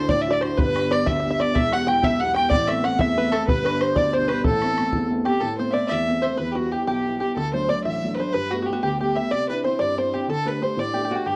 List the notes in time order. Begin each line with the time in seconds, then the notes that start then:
Already playing: D2 D4 E4 F#4 C5
0.09 A2 D5, bodhran
0.21 E5
0.27 D4 E4 F#4 D5
0.33 D5
0.41 D4 E4 F#4 C5, bodhran
0.57 G1 G2 B4, bodhran
0.75 B3 D4 G4, bodhran
0.90 B3 D4 G4 D5, bodhran
1.06 D2 E5, bodhran
1.20 E5
1.24 B3 D4 G4
1.31 E5
1.39 B3 D4 G4 D5, bodhran
1.54 E1 E2 E5, bodhran
1.71 B3 E4 G4 F#5, bodhran
1.87 B3 E4 G4 G5, bodhran
2.02 B1 E5, bodhran
2.20 B3 E4 G4 F#5
2.34 B3 G4 G5, bodhran
2.50 A1 A2 D5, bodhran
2.67 A3 B3 C4 E5, bodhran
2.83 A3 B3 C4 F#5, bodhran
2.98 E2 E5, bodhran
3.16 A3 B3 C4 B4
3.31 A3 B3 C4 A4, bodhran
3.48 G1 G2 B4, bodhran
3.65 G3 B3 D4 B4, bodhran
3.80 G3 B3 D4 C5, bodhran
3.96 D2 D5, bodhran
4.13 B2 G3 D4 C5
4.28 G3 B3 D4 B4, bodhran
4.44 A1 A2 A4, bodhran
4.62 A3 B3 C4, bodhran
4.77 A3 B3 C4, bodhran
4.93 E2, bodhran
5.11 A3 B3 C4
5.25 A3 B3 C4 G4, bodhran
5.41 A2 A4
5.58 A3 B3 C4 C5
5.70 D5 E5
5.75 A3 B3 C4
5.88 E2 E5
6.08 A3 B3 C4
6.22 A3 C5
6.37 E2 B4
6.52 F#4 G4
6.56 G3 B3 E4 F#4
6.71 G3 B3 E4 G4
6.87 B1 G4
7.05 G3 B3 E4
7.20 G3 B3 E4 G4
7.36 D2 A4
7.53 F#3 A3 D4 C5
7.68 F#3 A3 D4 D5
7.84 A1 E5
8.03 F#3 A3 D4
8.15 A3 B4 C5
8.19 F#3 D4 C5
8.33 G2 B4
8.51 G3 A3 B3 F#4
8.62 F#4 G4
8.68 G3 A3 B3
8.73 F#4
8.83 D2 G4
9.00 G3 A3 B3 G4
9.16 G3 A3 B3 E5
9.31 C3 D5
9.49 C4 D4 E4 B4
9.64 C4 D4 E4 C5
9.79 G2 D5
9.97 C4 D4 E4 C5
10.13 C4 D4 E4 G4
10.28 D3 A4
10.45 A3 D4 G4 B4
10.61 A3 D4 G4 C5
10.77 A2 D5
10.94 A3 D4 G4
11.05 G4
11.10 A3 D4 F#4 G4
11.15 G4
11.26 G2 G4